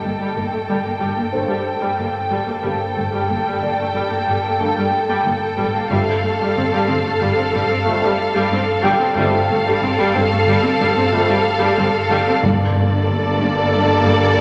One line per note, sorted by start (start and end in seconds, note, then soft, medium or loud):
0.00 0.10 G1 soft
0.00 0.32 G2 medium
0.00 0.23 G2 soft
0.00 0.10 G2 soft
0.00 2.60 A4 soft
0.00 1.30 D#5 soft
0.00 2.60 G5 soft
0.05 0.11 A#3 soft
0.20 0.27 G2 soft
0.20 0.35 G3 soft
0.36 0.42 G1 soft
0.36 0.43 G2 soft
0.36 0.57 G2 soft
0.36 0.43 A#3 soft
0.52 0.59 G2 soft
0.52 0.59 A3 soft
0.68 0.75 G1 soft
0.68 0.75 G2 soft
0.68 0.89 G2 soft
0.68 0.84 G3 soft
0.84 0.92 G2 soft
0.84 0.91 A#3 soft
1.00 1.08 G1 soft
1.00 1.08 G2 soft
1.00 1.21 G2 soft
1.00 1.16 G3 soft
1.17 1.24 G2 soft
1.17 1.24 A#3 soft
1.33 1.40 G1 soft
1.33 1.53 G2 soft
1.33 1.40 G2 soft
1.33 1.57 G3 soft
1.33 1.40 A3 soft
1.33 1.57 A#3 soft
1.33 1.56 D4 soft
1.33 1.56 A4 soft
1.33 3.25 C5 soft
1.48 1.57 G2 soft
1.48 1.65 G3 soft
1.67 1.86 G2 soft
1.81 1.89 G2 soft
1.81 1.97 G3 soft
1.98 2.06 G1 soft
1.98 2.06 G2 soft
1.98 2.19 G2 soft
1.98 2.05 A#3 soft
2.31 2.38 G1 soft
2.31 2.38 G2 soft
2.31 2.47 G3 soft
2.31 2.52 G3 soft
2.47 2.55 G2 soft
2.47 2.54 A#3 soft
2.62 2.71 G1 soft
2.62 2.70 G2 medium
2.62 2.84 G2 soft
2.62 2.79 G3 soft
2.62 2.87 G3 soft
2.62 2.87 A#3 soft
2.62 2.87 D4 soft
2.62 2.87 A4 soft
2.62 5.87 A4 soft
2.62 5.86 G5 soft
2.95 3.03 G1 soft
2.95 3.03 G2 soft
2.95 3.16 G2 soft
2.95 3.02 A3 soft
3.12 3.20 G2 medium
3.12 3.28 G3 soft
3.29 3.36 G1 soft
3.29 3.49 G2 soft
3.29 3.36 G2 soft
3.29 3.36 A#3 soft
3.46 3.52 G2 soft
3.46 3.62 G3 soft
3.61 3.68 G1 soft
3.61 3.81 G2 medium
3.61 3.69 G2 soft
3.61 3.69 A#3 soft
3.61 5.54 D5 soft
3.78 3.85 G2 soft
3.78 3.86 A3 soft
3.94 4.01 G1 medium
3.94 4.01 G2 medium
3.94 4.14 G2 soft
3.94 4.10 G3 medium
4.11 4.17 G2 soft
4.11 4.18 A#3 soft
4.27 4.34 G1 medium
4.27 4.34 G2 medium
4.27 4.47 G2 medium
4.27 4.43 G3 soft
4.43 4.50 G2 soft
4.43 4.50 A#3 soft
4.59 4.66 G1 soft
4.59 4.66 G2 soft
4.59 4.80 G2 soft
4.59 4.83 G3 soft
4.59 4.66 A3 soft
4.59 4.83 A#3 soft
4.59 4.83 D4 medium
4.59 4.83 A4 soft
4.76 4.83 G2 medium
4.76 4.92 G3 medium
4.94 5.13 G2 soft
5.09 5.16 G2 medium
5.09 5.24 G3 medium
5.25 5.31 G1 soft
5.25 5.32 G2 soft
5.25 5.45 G2 medium
5.25 5.32 A#3 soft
5.58 5.64 G1 medium
5.58 5.65 G2 medium
5.58 5.73 G3 medium
5.58 5.78 G3 soft
5.73 5.81 G2 soft
5.73 5.80 A#3 medium
5.90 5.97 G1 medium
5.90 5.97 G2 medium
5.90 6.10 G2 medium
5.90 6.13 G3 medium
5.90 6.06 G3 medium
5.90 6.13 A3 medium
5.90 6.13 C4 medium
5.90 6.13 F4 medium
5.90 9.13 A4 medium
5.90 9.13 F5 medium
6.23 6.30 G1 soft
6.23 6.30 G2 soft
6.23 6.43 G2 soft
6.23 6.30 A3 soft
6.39 6.46 G2 medium
6.39 6.56 G3 medium
6.56 6.63 G1 medium
6.56 6.62 G2 soft
6.56 6.76 G2 medium
6.56 6.63 C4 soft
6.72 6.79 G2 medium
6.72 6.87 G3 medium
6.88 6.96 G1 soft
6.88 6.95 G2 soft
6.88 7.08 G2 medium
6.88 6.95 C4 soft
7.04 7.11 G2 soft
7.04 7.11 A3 soft
7.20 7.28 G1 medium
7.20 7.27 G2 medium
7.20 7.41 G2 soft
7.20 7.36 G3 medium
7.36 7.44 G2 soft
7.36 7.43 C4 soft
7.53 7.61 G1 medium
7.53 7.73 G2 medium
7.53 7.60 G2 medium
7.53 7.69 G3 medium
7.70 7.77 G2 soft
7.70 7.77 C4 medium
7.85 7.93 G1 medium
7.85 8.06 G2 medium
7.85 7.93 G2 medium
7.85 8.10 G3 medium
7.85 7.92 A3 medium
7.85 8.10 A3 medium
7.85 8.09 C4 medium
7.85 8.09 F4 medium
8.03 8.09 G2 medium
8.03 8.18 G3 medium
8.19 8.38 G2 soft
8.35 8.41 G2 medium
8.35 8.50 G3 medium
8.51 8.59 G1 medium
8.51 8.58 G2 medium
8.51 8.71 G2 medium
8.51 8.59 C4 medium
8.83 8.91 G1 medium
8.83 8.90 G2 medium
8.83 9.03 G3 medium
8.83 8.99 G3 medium
8.83 10.76 G5 medium
9.00 9.06 G2 medium
9.00 9.07 C4 medium
9.16 9.24 G1 medium
9.16 9.36 G2 medium
9.16 9.23 G2 medium
9.16 9.32 G3 medium
9.16 9.40 G3 medium
9.16 9.40 A3 medium
9.16 9.40 C4 medium
9.16 9.40 F4 medium
9.16 12.39 A4 medium
9.16 12.39 F5 medium
9.49 9.56 G1 medium
9.49 9.68 G2 medium
9.49 9.56 G2 medium
9.49 9.56 A3 soft
9.65 9.71 G2 medium
9.65 9.81 G3 medium
9.82 9.88 G1 medium
9.82 9.88 G2 medium
9.82 10.01 G2 medium
9.82 9.89 C4 medium
9.97 10.05 G2 medium
9.97 10.13 G3 medium
10.13 10.22 G1 medium
10.13 10.21 G2 medium
10.13 10.35 G2 medium
10.13 10.20 C4 medium
10.31 10.37 G2 medium
10.31 10.37 A3 medium
10.46 10.53 G1 medium
10.46 10.67 G2 medium
10.46 10.54 G2 medium
10.46 10.62 G3 medium
10.64 10.70 G2 medium
10.64 10.70 C4 medium
10.79 10.86 G1 medium
10.79 10.86 G2 medium
10.79 11.00 G2 medium
10.79 10.95 G3 medium
10.96 11.03 G2 medium
10.96 11.03 C4 medium
11.12 11.18 G1 medium
11.12 11.19 G2 medium
11.12 11.33 G2 medium
11.12 11.35 G3 medium
11.12 11.35 A3 medium
11.12 11.19 A3 medium
11.12 11.35 C4 medium
11.12 11.35 F4 medium
11.27 11.35 G2 medium
11.27 11.43 G3 medium
11.45 11.65 G2 medium
11.60 11.67 G2 medium
11.60 11.76 G3 medium
11.77 11.84 G1 medium
11.77 11.83 G2 medium
11.77 11.98 G2 medium
11.77 11.84 C4 medium
12.09 12.16 G1 medium
12.09 12.16 G2 medium
12.09 12.26 G3 medium
12.09 12.31 G3 medium
12.09 14.02 F5 medium
12.26 12.33 G2 medium
12.26 12.34 C4 medium
12.42 14.41 G1 medium
12.42 14.41 G2 medium
12.42 13.37 G2 medium
12.42 12.63 G2 medium
12.42 14.41 G3 medium
12.42 14.41 A#3 medium
12.42 14.41 D4 medium
12.42 14.41 G4 medium
12.42 14.41 A4 medium
12.42 14.41 D5 medium
12.76 12.95 G2 medium
13.08 13.27 G2 medium
13.40 13.60 G2 medium
13.73 13.93 G2 medium
14.05 14.25 G2 medium